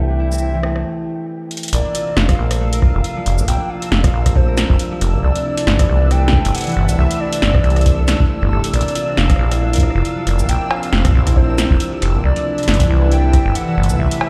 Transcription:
Already playing: C2 C3 E3 A3 C4 D4 E4 A4 B4 E5 G5
0.10 D4
0.20 E4
0.32 C4, cabasa
0.34 cabasa
0.38 E4, cabasa
0.54 E3
0.63 A3, cross-stick
0.76 A3, cross-stick
1.51 closed hi-hat
1.57 closed hi-hat
1.63 closed hi-hat
1.68 closed hi-hat
1.73 A#1 C3 A#3 D4 D5 E6, closed hi-hat
1.85 D4
1.95 F4, closed hi-hat
2.07 C4
2.17 F1 F4 F5, snare
2.29 F3, kick, cross-stick, closed hi-hat
2.38 A#1 A#3
2.51 A3, cross-stick, closed hi-hat
2.60 A3 F5
2.73 A#4, closed hi-hat
2.82 F4, kick, cross-stick
2.95 F1 F4
3.04 F4, closed hi-hat
3.16 F3
3.26 F1 A#3, cross-stick, closed hi-hat
3.38 A#1 A#3, cabasa
3.48 A#1 A#3 G5, closed hi-hat
3.60 D4
3.70 F4 F5
3.82 C4, closed hi-hat
3.92 F1 F4, snare
4.04 F3, kick, cross-stick, closed hi-hat
4.14 A#1 A#3
4.26 A3, kick, cross-stick, closed hi-hat
4.36 A3 C5, kick
4.48 A#4
4.57 F4, cross-stick, snare, closed hi-hat, cabasa
4.70 F1 F4, kick
4.79 F4, closed hi-hat
4.92 F3
5.01 F1 A#3, cross-stick, closed hi-hat
5.13 A#1 A#3
5.23 C2 E3 A3 B4 D5
5.35 D4, closed hi-hat
5.45 E4
5.57 C4, closed hi-hat
5.67 G1 E4, snare
5.79 E3, kick, cross-stick, closed hi-hat
5.89 C2 A3
6.01 A3
6.11 A3 G5, cross-stick, closed hi-hat
6.23 A4
6.28 snare
6.33 E4, kick, cross-stick
6.45 G1 E4, closed hi-hat
6.55 E4 F#5, closed hi-hat
6.58 closed hi-hat
6.61 closed hi-hat
6.64 E3, closed hi-hat
6.67 closed hi-hat
6.69 closed hi-hat
6.72 closed hi-hat
6.76 G1 A3
6.89 C2 A3, closed hi-hat, cabasa
6.98 C2 A3 E5
7.11 D4, closed hi-hat
7.20 E4 D5
7.33 C4, closed hi-hat
7.42 G1 E4, snare
7.54 E3, kick, cross-stick
7.64 C2 A3, closed hi-hat
7.70 closed hi-hat
7.76 A3, cross-stick, closed hi-hat
7.81 closed hi-hat
7.86 A3, kick, closed hi-hat
7.98 A4
8.08 A3, cross-stick, snare, closed hi-hat, cabasa
8.20 E4, kick
8.30 A3
8.42 G1 A3
8.52 G1 A4
8.64 A3, closed hi-hat
8.74 A#1 A#3 D5, closed hi-hat
8.81 closed hi-hat
8.86 D4, closed hi-hat
8.95 F4, closed hi-hat
9.08 C4
9.17 F1 F4 F5, snare
9.30 F3, kick, cross-stick, closed hi-hat
9.36 A#1 E4, cross-stick
9.43 cross-stick
9.51 A3, cross-stick, closed hi-hat
9.61 A3 F5
9.73 A#4, closed hi-hat
9.76 kick, closed hi-hat
9.80 F4, cross-stick, closed hi-hat
9.90 cross-stick
9.95 F1 F4, cross-stick
10.05 F4, closed hi-hat
10.17 F3
10.27 F1 A#3, cross-stick, closed hi-hat
10.39 A#1 A#3, cabasa
10.49 A#1 A#3 C4 G5, closed hi-hat
10.61 D4
10.71 F4 F5, cowbell
10.83 C4, closed hi-hat
10.93 F1 F4, snare
11.05 F3, kick, cross-stick, closed hi-hat
11.11 A#1 E4, kick
11.19 kick
11.27 A3, kick, cross-stick, closed hi-hat
11.36 A3 C5, kick
11.49 A#4
11.58 F4, snare, closed hi-hat, cabasa
11.70 F1 F4, kick
11.80 F4, closed hi-hat
11.92 F3
12.02 F1 A#3, cross-stick, closed hi-hat
12.14 A#1 A#3
12.24 C2 C3 E3 A3 D4 B4 D5
12.36 D4, closed hi-hat
12.46 E4
12.58 C4, closed hi-hat
12.63 closed hi-hat
12.68 G1 E4, snare, closed hi-hat
12.74 closed hi-hat
12.80 E3, kick, closed hi-hat
12.90 C2 E4
13.02 A3, cross-stick
13.11 A3 G5, closed hi-hat
13.24 A4
13.33 E4, kick, cross-stick, closed hi-hat
13.46 G1 E4
13.55 E4 F#5, closed hi-hat
13.68 E3
13.77 G1 A3
13.83 closed hi-hat
13.89 C2 A3, cabasa
13.99 C2 A3 E4 E5, kick
14.11 D4, closed hi-hat
14.21 E4, cowbell

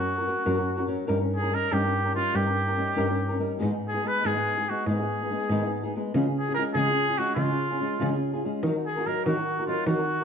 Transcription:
Already playing: F#2 F#4 A#4
0.00 C#4
0.18 C#4 F#4 A#4
0.27 F#3 C#4 F#4 A#4
0.45 F#2 F#3 C#4 F#4 A#4
0.57 C#4 F#4 A#4
0.77 C#4 F#4 A#4
0.87 F#3 C#4 F#4 A#4
1.07 G2 G3 C#4 D#4 A#4
1.19 C#4 D#4 A#4
1.36 G#4
1.42 C#4 D#4 A#4
1.51 G3 C#4 D#4 A#4
1.71 G2 G3 C#4 D#4 G4 A#4
1.84 C#4 D#4 A#4
2.04 C#4 D#4 A#4
2.14 G3 C#4 D#4 F4 A#4
2.34 G2 G3 C#4 D#4 G4 A#4
2.46 C#4 D#4 A#4
2.68 C#4 D#4 A#4
2.76 G3 C#4 D#4 A#4
2.96 G2 G3 C#4 D#4 A#4
3.08 C#4 D#4 A#4
3.29 C#4 D#4 A#4
3.39 G3 C#4 D#4 A#4
3.59 G#2 D#3 G#3 B3 D#4 G#4
3.72 G#3 B3 D#4 G#4
3.88 G#4
3.93 G#3 B3 D#4 G#4
4.03 G#3 B3 D#4 G#4
4.07 B4
4.22 G#2 D#3 G#3 B3 D#4 G#4
4.35 G#3 B3 D#4 G#4
4.57 G#3 B3 D#4 G#4
4.69 G#3 B3 D#4 F#4 G#4
4.86 G#2 D#3 G#3 B3 D#4 G#4
5.00 G#3 B3 D#4 G#4
5.22 G#3 B3 D#4 G#4
5.31 G#3 B3 D#4 G#4
5.49 G#2 D#3 G#3 B3 D#4 G#4
5.63 G#3 B3 D#4 G#4
5.83 G#3 B3 D#4 G#4
5.96 G#3 B3 D#4 G#4
6.14 C#3 G#3 C#4 F4 G#4
6.26 C#4 F4 G#4
6.38 G#4
6.49 C#4 F4 G#4
6.54 G#3 C#4 A#4
6.59 F4 G#4
6.74 C#3 G#3 C#4 F4 G#4
6.88 C#4 F4 G#4
7.08 C#4 F4 G#4
7.18 G#3 C#4 F4 F#4 G#4
7.35 C#3 G#3 C#4 F4 G#4
7.48 C#4 F4 G#4
7.70 C#4 F4 G#4
7.80 G#3 C#4 F4 G#4
8.00 C#3 G#3 C#4 F4 G#4
8.12 C#4 F4 G#4
8.33 C#4 F4 G#4
8.45 G#3 C#4 F4 G#4
8.63 D#3 F#3 D#4 F#4 A#4
8.75 D#4 F#4 A#4
8.86 G#4
8.97 D#4 F#4 A#4
9.06 F#3 D#4 F#4 A#4
9.25 D#3 F#3 D#4 F#4 A#4
9.37 D#4 F#4 A#4
9.59 D#4 F#4 A#4
9.66 F#3 D#4 F4 F#4 A#4
9.87 D#3 F#3 D#4 F#4 A#4
9.99 D#4 F#4 A#4

